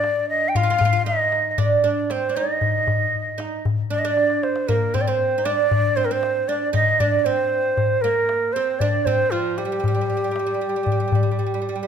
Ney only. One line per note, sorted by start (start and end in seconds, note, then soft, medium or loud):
0.00 0.29 D5 loud
0.29 0.50 D#5 medium
0.48 0.57 G5 medium
0.56 1.06 F5 loud
1.06 1.51 D#5 loud
1.51 1.61 D#5 medium
1.59 2.12 D5 medium
2.11 2.38 C5 medium
2.36 3.64 D#5 medium
3.91 4.00 D5 medium
3.99 4.07 D#5 medium
4.05 4.45 D5 loud
4.43 4.70 C5 medium
4.68 4.96 A#4 medium
4.94 5.03 C5 loud
5.01 5.09 D5 medium
5.08 5.46 C5 medium
5.45 5.98 D5 loud
5.96 6.06 C5 medium
6.05 6.13 A#4 medium
6.12 6.50 C5 loud
6.48 6.74 D5 medium
6.74 7.01 D#5 loud
6.99 7.19 D5 loud
7.19 7.26 D5 medium
7.25 8.03 C5 medium
8.01 8.54 A#4 loud
8.53 8.81 C5 medium
8.79 9.07 D5 medium
9.05 9.32 C5 loud
9.31 9.59 F4 medium
9.57 11.87 G4 medium